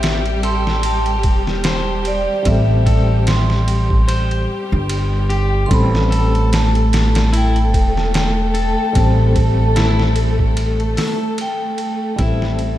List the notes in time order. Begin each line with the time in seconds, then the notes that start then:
Already playing: A1 G3 C4 G4 A4 C5 E5
0.03 snare, ride
0.26 ride
0.43 A4 C6, ride
0.67 snare
0.83 A5, ride
1.06 ride
1.23 E1, kick, ride
1.47 snare
1.64 C5, snare, ride
2.05 D5, ride
2.43 A1 G3 C4 E5, kick, ride
2.49 A4
2.86 A4, kick, ride
3.27 C6, snare, ride
3.50 snare
3.68 ride
3.90 kick
4.08 C5, ride
4.31 ride
4.72 G1
4.89 ride
5.30 G4, ride
5.66 G3 A3 A4 C6
5.71 A1 C4 A4 B5, kick, ride
5.95 snare
6.11 A4, ride
6.35 ride
6.53 A5, snare, ride
6.75 ride
6.93 snare, ride
7.15 snare, ride
7.33 E4, ride
7.37 G5
7.56 ride
7.74 E1, kick, ride
7.97 snare
8.14 G5, snare, ride
8.54 A4, ride
8.93 A1 G3 C4 A5, kick, ride
8.99 A4
9.36 kick, ride
9.76 E4, snare, ride
10.00 snare
10.16 ride
10.39 kick
10.57 ride
10.80 ride
10.97 A4, snare, open hi-hat
11.38 G5, ride
11.78 ride
12.16 A1 G3 C4 E4, kick, ride
12.22 A4 E5
12.42 snare
12.59 ride